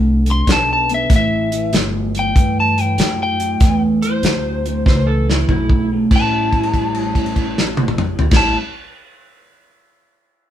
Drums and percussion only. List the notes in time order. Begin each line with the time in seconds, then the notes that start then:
0.26 closed hi-hat
0.47 kick, snare, closed hi-hat
0.89 closed hi-hat
1.10 kick, snare, closed hi-hat
1.52 closed hi-hat
1.73 snare, closed hi-hat
2.15 closed hi-hat
2.36 kick, closed hi-hat
2.78 closed hi-hat
2.98 snare, closed hi-hat
3.40 closed hi-hat
3.60 kick, snare, closed hi-hat
4.02 closed hi-hat
4.23 snare, closed hi-hat
4.66 closed hi-hat
4.86 kick, snare
5.30 snare
5.49 kick, mid tom
5.69 kick
6.11 kick, crash
6.52 kick, crash
6.63 crash
6.74 kick, crash
6.95 crash
7.15 kick, crash
7.26 crash
7.36 kick, crash
7.58 snare
7.77 high tom
7.88 mid tom
7.98 mid tom
8.19 floor tom
8.31 kick, snare, crash